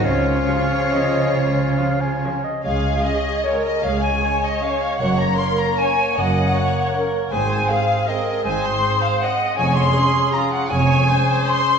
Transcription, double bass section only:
X:1
M:3/4
L:1/8
Q:1/4=154
K:Db
V:1 name="Double bass section" clef=bass
D,,2 z4 | D,,2 z4 | D,,2 z4 | D,,2 z4 |
G,,,2 z4 | G,,,2 z4 | A,,,2 z4 | A,,,2 z4 |
F,,,2 z4 | F,,,2 z4 |]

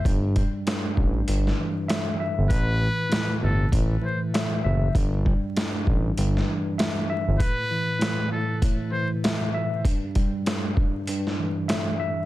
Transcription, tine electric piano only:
X:1
M:4/4
L:1/8
Q:"Swing 16ths" 1/4=98
K:Em
V:1 name="Tine electric piano" clef=bass
G,, G, G,, G,, G,, E, e e | A,, E, A,, A,, A,, E, e e | G,, G, G,, G,, G,, E, e e | A,, E, A,, A,, A,, E, e e |
G,, G, G,, G,, G,, E, e e |]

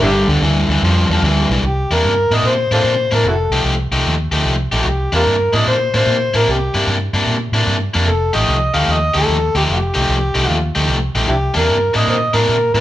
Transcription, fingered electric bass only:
X:1
M:4/4
L:1/8
Q:"Swing" 1/4=149
K:F
V:1 name="Fingered electric bass" clef=bass
G,,, D,, D,, D,, F,, E,, D,, =B,,, | C,, E,, G,, A,, B,, A,, B,, A,, | F,,, C,, C,, C,, _E,, D,, C,, B,,, | C,, E,, G,, A,, B,, A,, B,, A,, |
C,, G,, G,, G,, B,, A,, G,, F,, | F,,, A,,, C,, D,, _E,, D,, E,, D,, | F,,, C,, C,, C,, _E,, D,, C,, B,,, | C,, E,, G,, A,, B,, A,, B,, A,, |]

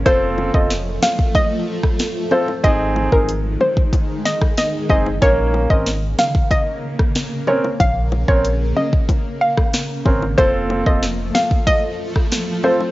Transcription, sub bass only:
X:1
M:4/4
L:1/16
Q:1/4=93
K:Bbm
V:1 name="Sub bass" clef=bass
F,,,3 F,,,3 z8 z2 | A,,,3 A,,,3 z8 G,,,2 | B,,,3 A,,,3 z8 z2 | B,,,3 B,,,3 z8 A,,,2 |
F,,,3 F,,,3 z8 z2 |]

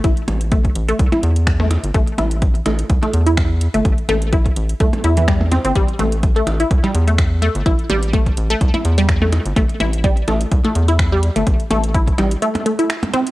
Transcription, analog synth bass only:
X:1
M:4/4
L:1/16
Q:"Swing 16ths" 1/4=126
K:Am
V:1 name="Analog synth bass" clef=bass
A,,, z A,,,4 A,,, z C,, z E,,4- E,, G,,, | A,,, z A,,,4 A,,, z C,, z E,,4- E,, G,,, | A,,, z A,,,4 A,,, z C,, z E,,4- E,, G,,, | A,,, z A,,,4 A,,, z C,, z E,,4- E,, G,,, |
A,,, z A,,,4 A,,, z C,, z E,,4- E,, G,,, | A,,, z A,,,4 A,,, z C,, z E,,4- E,, G,,, | A,,, z A,,,4 A,,, z8 z |]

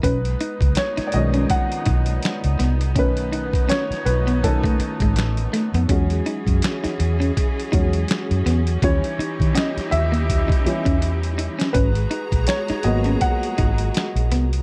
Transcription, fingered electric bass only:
X:1
M:4/4
L:1/16
Q:"Swing 16ths" 1/4=82
K:B
V:1 name="Fingered electric bass" clef=bass
B,,,2 z C,, z2 B,,,2 z2 B,,,2 z C,, =C,,2 | B,,,4 z2 B,,,4 z G,,, =A,,,2 z ^E,, | E,,2 z F,, z2 E,,2 z2 E,,2 z F,, E,,2 | D,, z2 D, z2 D,,4 z E,,4 z |
G,,,2 z A,,, z2 G,,,2 z2 G,,,2 z A,,, =C,,2 |]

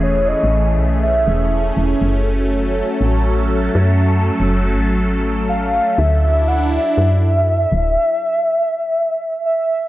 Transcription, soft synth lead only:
X:1
M:4/4
L:1/8
Q:"Swing 16ths" 1/4=121
K:Gblyd
V:1 name="Soft synth lead"
^c e2 z =e3 z | z8 | z6 f2 | =e2 ^f e4- e- |
=e6 e2 |]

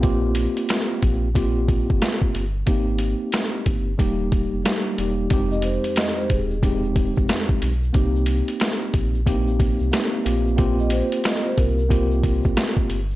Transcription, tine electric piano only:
X:1
M:4/4
L:1/8
Q:"Swing 16ths" 1/4=91
K:Fm
V:1 name="Tine electric piano"
[B,CFG]4 [B,CFG]3 z | [B,CEG]4 [G,B,EG]2 [G,B,EG] [G,B,EG] | [F,,A,CEG]4 [F,,A,CEG]3 z | [B,CEG]4 [B,CEG]2 [B,CEG] [B,CFG] |
[B,CFG]4 [B,CFG]3 z |]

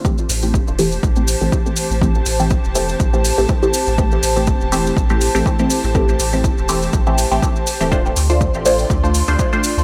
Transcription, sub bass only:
X:1
M:4/4
L:1/16
Q:"Swing 16ths" 1/4=122
K:Am
V:1 name="Sub bass" clef=bass
z2 A,,,3 E,,,3 A,,,3 A,,, z3 A,,,- | A,,,2 A,,,3 E,,,3 A,,,3 A,,, z3 A,,,- | A,,,2 A,,,3 E,,,3 A,,,3 A,,, z3 A,,,- | A,,,2 A,,,3 E,,,3 A,,,3 A,,, z3 D,,,- |
D,,,2 D,,3 A,,,3 D,,3 D,, z3 D,, |]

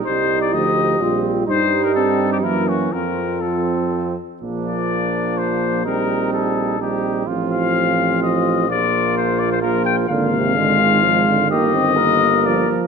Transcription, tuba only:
X:1
M:3/4
L:1/8
Q:1/4=127
K:Cm
V:1 name="Tuba" clef=bass
C,,2 D,,2 B,,,2 | [K:Bb] G,,4 _G,,2 | F,,4- F,, z | B,,,6- |
B,,,6 | A,,,6 | B,,,6 | _A,,,6 |
G,,,6 |]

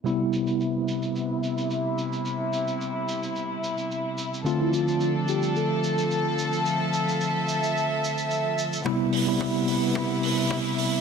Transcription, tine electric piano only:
X:1
M:4/4
L:1/16
Q:1/4=109
K:C
V:1 name="Tine electric piano"
[C,G,B,E]16- | [C,G,B,E]16 | [D,A,CF]16- | [D,A,CF]16 |
[C,G,B,E]3 [C,G,B,E]12- [C,G,B,E] |]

